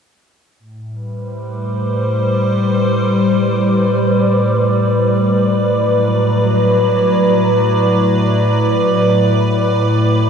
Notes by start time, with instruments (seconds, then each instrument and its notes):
0.59 ambient pad A2, synth drone A3 E4
0.88 ambient pad G3
0.95 ambient pad B4
1.14 ambient pad C5
1.59 ambient pad D5
5.58 ambient pad F#3